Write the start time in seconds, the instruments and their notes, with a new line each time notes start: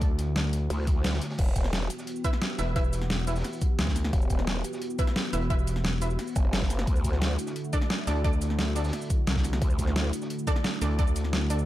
Already playing: fm bass D2, analog synth pad D3 A3 E4 F#4
0.01 kick, closed hi-hat
0.18 snare, closed hi-hat
0.36 snare, closed hi-hat
0.53 snare, closed hi-hat
0.70 wobble bass D2, closed hi-hat, open hi-hat
0.87 kick, closed hi-hat
1.04 snare, closed hi-hat
1.13 snare, closed hi-hat
1.21 snare, closed hi-hat
1.30 snare, closed hi-hat
1.38 wobble bass E1, analog synth pad E3 B3 F#4 G4, kick, closed hi-hat, crash
1.47 cabasa
1.55 kick, closed hi-hat, cabasa
1.64 snare
1.73 snare, closed hi-hat
1.82 snare
1.90 closed hi-hat, cabasa
1.99 snare, cabasa
2.07 closed hi-hat
2.16 cabasa
2.24 synth stab E4 B4 E5, kick, closed hi-hat, cabasa
2.33 snare, closed hi-hat
2.42 snare, closed hi-hat
2.51 snare
2.58 fm bass E1, synth stab E4 B4 E5, snare, closed hi-hat, cabasa
2.67 closed hi-hat
2.76 synth stab E4 B4 E5, kick, closed hi-hat
2.84 cabasa
2.93 snare, closed hi-hat, cabasa
3.02 snare
3.10 snare, closed hi-hat
3.27 synth stab E4 B4 E5, snare, closed hi-hat, cabasa
3.36 snare, closed hi-hat, cabasa
3.40 snare, closed hi-hat
3.44 snare, closed hi-hat, open hi-hat
3.53 cabasa
3.62 kick, closed hi-hat, cabasa
3.79 fm bass D2, snare, closed hi-hat
3.87 kick, snare
3.96 snare, closed hi-hat, cabasa
4.04 snare
4.13 wobble bass E1, kick, closed hi-hat
4.22 cabasa
4.30 kick, closed hi-hat, cabasa
4.39 snare
4.47 snare, closed hi-hat
4.56 snare
4.64 closed hi-hat, cabasa
4.73 snare, cabasa
4.82 closed hi-hat
4.90 cabasa
4.99 synth stab E4 B4 E5, kick, closed hi-hat, cabasa
5.07 snare, closed hi-hat
5.16 snare, closed hi-hat
5.24 snare
5.33 fm bass E1, synth stab E4 B4 E5, snare, closed hi-hat, cabasa
5.41 closed hi-hat
5.50 synth stab E4 B4 E5, kick, closed hi-hat
5.59 cabasa
5.67 snare, closed hi-hat, cabasa
5.76 snare
5.84 snare, closed hi-hat
6.01 synth stab E4 B4 E5, snare, closed hi-hat, cabasa
6.10 cabasa
6.19 snare, closed hi-hat, open hi-hat
6.27 cabasa
6.35 wobble bass F#1, kick, closed hi-hat, cabasa
6.53 snare, closed hi-hat
6.62 kick, snare
6.70 snare, closed hi-hat, cabasa
6.79 snare
6.87 wobble bass D2, analog synth pad D3 A3 E4, kick, closed hi-hat
6.96 cabasa
7.05 kick, closed hi-hat, cabasa
7.13 snare
7.21 snare, closed hi-hat
7.31 snare
7.38 closed hi-hat, cabasa
7.47 snare, cabasa
7.56 closed hi-hat
7.64 cabasa
7.73 synth stab D4 A4 D5, kick, closed hi-hat, cabasa
7.82 snare, closed hi-hat
7.90 snare, closed hi-hat
7.98 snare
8.07 fm bass D2, synth stab D4 A4 D5, snare, closed hi-hat, cabasa
8.16 closed hi-hat
8.24 synth stab D4 A4 D5, kick, closed hi-hat
8.33 cabasa
8.41 snare, closed hi-hat, cabasa
8.50 snare
8.58 snare, closed hi-hat
8.75 synth stab D4 A4 D5, snare, closed hi-hat, cabasa
8.84 snare, closed hi-hat, cabasa
8.88 snare, closed hi-hat
8.93 snare, closed hi-hat, open hi-hat
9.02 cabasa
9.10 kick, closed hi-hat, cabasa
9.27 fm bass C2, snare, closed hi-hat
9.36 kick, snare
9.44 snare, closed hi-hat, cabasa
9.53 snare
9.62 wobble bass D2, kick, closed hi-hat
9.70 cabasa
9.79 kick, closed hi-hat, cabasa
9.87 snare
9.96 snare, closed hi-hat
10.05 snare
10.13 closed hi-hat, cabasa
10.22 snare, cabasa
10.30 closed hi-hat
10.39 cabasa
10.47 synth stab D4 A4 D5, kick, closed hi-hat, cabasa
10.56 snare, closed hi-hat
10.64 snare, closed hi-hat
10.74 snare
10.82 fm bass D2, synth stab D4 A4 D5, snare, closed hi-hat, cabasa
10.91 closed hi-hat
10.98 synth stab D4 A4 D5, kick, closed hi-hat
11.07 cabasa
11.16 snare, closed hi-hat, cabasa
11.24 snare
11.33 snare, closed hi-hat
11.50 synth stab D4 A4 D5, snare, closed hi-hat, cabasa
11.59 cabasa